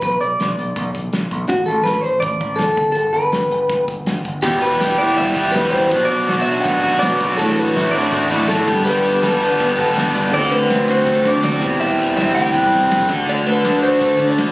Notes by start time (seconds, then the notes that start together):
0.01 B1 B4, kick, closed hi-hat
0.21 B1 D5, closed hi-hat
0.40 B1, snare, closed hi-hat
0.59 B1, closed hi-hat
0.76 B1, kick, closed hi-hat
0.94 B1, kick, closed hi-hat
1.13 B1, snare, closed hi-hat
1.31 B1, kick, closed hi-hat
1.49 A1 F#4, kick, closed hi-hat
1.66 A1 A4, closed hi-hat
1.84 A1 B4, snare, closed hi-hat
2.01 A1 C5, closed hi-hat
2.20 A1 D5, kick, closed hi-hat
2.40 A1, kick, closed hi-hat
2.56 F#1 A4, snare, closed hi-hat
2.77 G1, kick, closed hi-hat
2.92 G1 A4, closed hi-hat
3.13 G1 B4, closed hi-hat
3.32 G1, snare, closed hi-hat
3.51 G1, closed hi-hat
3.69 G1, kick, closed hi-hat
3.88 G1, kick, closed hi-hat
4.06 G1, snare, closed hi-hat
4.25 G1, kick, closed hi-hat
4.43 E1 E2 B2 E3 G3 B3 G4, kick, closed hi-hat, shaker
4.61 E1 E3 G3 B3 G4 B4, closed hi-hat, shaker
4.79 E1 E3 G3 B3 G4, snare, closed hi-hat, shaker
4.98 E1 E3 G3 B3 E4 G4 D5, closed hi-hat, shaker
5.17 E1 G3 E5, kick, closed hi-hat, shaker
5.35 E1 E3 G3 B3 G4, kick, closed hi-hat, shaker
5.52 E1 E2 B2 E3 G3 B4, snare, closed hi-hat, shaker
5.56 B3 G4
5.70 C5, kick, closed hi-hat, shaker
5.74 E3
5.91 B1 B2 F#3 B3 D4 F#4, kick, closed hi-hat, shaker
6.05 D5
6.09 B1 B3 D4 F#4, closed hi-hat, shaker
6.27 B1 F#3 B3 D4 F#4, snare, closed hi-hat, shaker
6.41 F#4 E5
6.46 B1 B3 D4, closed hi-hat, shaker
6.60 F#5
6.65 B1 B3, kick, closed hi-hat, shaker
6.82 B1 B3 D4 F#4, kick, closed hi-hat, shaker
6.99 B1 B2 F#3 B3 D4 F#4 D5, snare, closed hi-hat, shaker
7.03 B3
7.20 B1 F#3, kick, closed hi-hat, shaker
7.37 A1 A2 F#3 A3 D4 F#4 A4, kick, closed hi-hat, shaker
7.52 A4 B4
7.57 A1 A3 D4 F#4, closed hi-hat, shaker
7.75 A1 F#3 A3 D4 E4 F#4, snare, closed hi-hat, shaker
7.91 A1 D4 F#4 D5, closed hi-hat
7.95 A3, shaker
8.13 A1 A3, kick, closed hi-hat, shaker
8.31 A1 A3 D4 E4 F#4, kick, closed hi-hat, shaker
8.48 A1 A2 F#3 A3 D4 F#4 A4, snare, closed hi-hat, shaker
8.67 G1 G2 D3 G3 B3 D4 G4, kick, closed hi-hat, shaker
8.85 G1 G2 D3 G3 B3 D4 G4 B4, closed hi-hat, shaker
9.04 G1 G3 B3 D4 G4, closed hi-hat, shaker
9.22 G1 G3 B3 D4 G4 A4, snare, closed hi-hat, shaker
9.42 G1 G3 B3 D4 G4, closed hi-hat, shaker
9.60 G1 B3, kick, closed hi-hat, shaker
9.78 G1 G3 B3 D4 G4 A4, kick, closed hi-hat, shaker
9.95 G1 G2 D3 G3 B3 D4 G4, snare, closed hi-hat, shaker
10.15 G1 G3, kick, closed hi-hat, shaker
10.30 D2 D3 A3 C4 F#4 D5, kick, crash
10.34 D3
10.51 D2 D3 B4, ride
10.70 D2 C4, snare, ride
10.88 F#4 C5, ride
11.07 D2 A4, kick, ride
11.25 D3 C4 D5, kick, ride
11.43 D2 A4 D5, snare, ride
11.60 E1 E2 E3 G3 C4 G4, kick, ride
11.79 E1 E2 E5, ride
11.99 E1 G3, ride
12.17 E1 C4 E5, snare, ride
12.35 D2 G4 G5, ride
12.54 E1 B4, kick, ride
12.72 E1 C4, kick, ride
12.90 E1 B4, snare, ride
13.08 D2 D3 A3 D4 F#4, kick, ride
13.27 D2 D3 D5, ride
13.45 D2 D3 B4, ride
13.64 D2 D4, snare, ride
13.82 F#4 C5, ride
14.01 D2 A4, kick, ride
14.20 D3 D4, kick, ride
14.29 D5
14.37 D2 A4, snare, ride